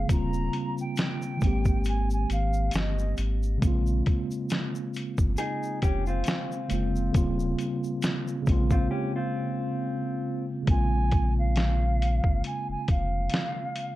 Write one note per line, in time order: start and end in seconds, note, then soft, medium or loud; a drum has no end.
0.00 0.07 C#3 soft
0.00 0.11 G#3 soft
0.00 0.09 A#3 soft
0.00 0.10 G#4 medium
0.07 0.49 D#1 loud
0.07 1.40 C#3 medium
0.07 1.41 G3 medium
0.07 1.41 A#3 medium
0.07 1.42 C4 medium
0.07 kick loud
0.07 closed hi-hat medium
0.07 shaker medium
0.12 1.43 F4 medium
0.12 0.75 A#5 loud
0.33 shaker soft
0.53 closed hi-hat medium
0.78 1.83 G5 medium
0.78 shaker soft
0.96 snare loud
0.96 closed hi-hat medium
0.96 shaker medium
1.22 shaker soft
1.37 3.56 D#3 medium
1.37 3.57 G#3 medium
1.37 shaker soft
1.42 2.26 G#1 loud
1.42 3.58 A#3 medium
1.42 3.59 C4 medium
1.42 kick medium
1.42 closed hi-hat medium
1.47 3.61 G4 medium
1.65 kick medium
1.65 shaker medium
1.84 2.09 G#5 medium
1.84 closed hi-hat medium
1.84 shaker medium
2.10 2.29 G#5 medium
2.10 shaker medium
2.30 2.70 G#1 loud
2.30 2.77 F5 medium
2.30 closed hi-hat medium
2.30 shaker soft
2.54 shaker soft
2.71 3.14 G1 medium
2.71 closed hi-hat medium
2.71 shaker medium
2.76 3.15 D#5 medium
2.76 snare loud
2.99 shaker soft
3.17 3.58 G#1 medium
3.17 closed hi-hat medium
3.17 shaker medium
3.43 shaker soft
3.58 6.65 C#3 medium
3.58 6.66 G#3 medium
3.62 4.02 A#1 loud
3.62 6.67 A#3 medium
3.62 6.68 C4 medium
3.62 kick loud
3.62 closed hi-hat medium
3.62 shaker medium
3.67 6.69 F4 medium
3.87 shaker soft
4.06 kick loud
4.06 closed hi-hat medium
4.31 shaker soft
4.49 snare medium
4.49 closed hi-hat medium
4.49 shaker medium
4.75 shaker soft
4.94 closed hi-hat medium
4.94 shaker soft
5.18 5.36 G1 loud
5.18 kick medium
5.18 shaker medium
5.37 5.81 D#4 medium
5.37 5.80 G#4 medium
5.37 closed hi-hat medium
5.37 shaker medium
5.63 shaker soft
5.82 6.23 F1 medium
5.82 6.06 C#4 medium
5.82 6.06 G4 medium
5.82 kick medium
5.82 closed hi-hat medium
5.82 shaker soft
6.06 7.11 C4 medium
6.06 7.11 F4 medium
6.06 shaker soft
6.24 closed hi-hat medium
6.24 shaker medium
6.28 snare loud
6.52 shaker soft
6.68 7.11 F1 medium
6.68 7.11 C#3 medium
6.68 7.14 G#3 medium
6.68 7.14 A#3 medium
6.68 7.15 C4 medium
6.68 closed hi-hat medium
6.68 shaker soft
6.73 7.16 F4 medium
6.96 shaker soft
7.12 7.55 D#1 loud
7.12 8.41 C#3 medium
7.12 8.47 G3 medium
7.12 8.46 A#3 medium
7.12 8.48 C4 medium
7.12 kick loud
7.12 closed hi-hat medium
7.12 shaker medium
7.17 8.48 F4 medium
7.39 shaker soft
7.58 closed hi-hat medium
7.58 shaker soft
7.84 shaker medium
8.02 snare loud
8.02 closed hi-hat medium
8.02 shaker medium
8.28 shaker soft
8.42 10.61 C#3 medium
8.42 10.62 G#3 medium
8.46 8.88 A#1 loud
8.46 10.64 A#3 medium
8.46 10.65 C4 medium
8.46 kick loud
8.46 closed hi-hat medium
8.46 shaker soft
8.52 10.66 F4 medium
8.70 8.91 C4 medium
8.70 8.90 F4 medium
8.70 kick medium
8.70 shaker medium
8.91 9.15 C#4 medium
8.91 9.14 G4 medium
9.16 10.44 C4 medium
9.16 10.44 F4 medium
10.62 13.96 C#3 medium
10.62 13.96 G#3 medium
10.67 12.21 A#1 loud
10.67 13.96 A#3 medium
10.67 13.96 C4 medium
10.67 11.33 G#5 loud
10.67 kick loud
10.67 closed hi-hat medium
10.72 13.96 F4 medium
11.11 kick loud
11.11 closed hi-hat medium
11.39 12.41 F5 medium
11.56 snare medium
11.56 closed hi-hat medium
12.02 closed hi-hat medium
12.24 12.42 G1 medium
12.24 kick medium
12.44 12.67 G#5 medium
12.44 closed hi-hat medium
12.69 12.77 F1 soft
12.69 12.87 G#5 medium
12.88 13.29 F1 medium
12.88 13.96 F5 medium
12.88 kick medium
12.88 closed hi-hat medium
13.30 closed hi-hat medium
13.34 snare loud
13.76 closed hi-hat medium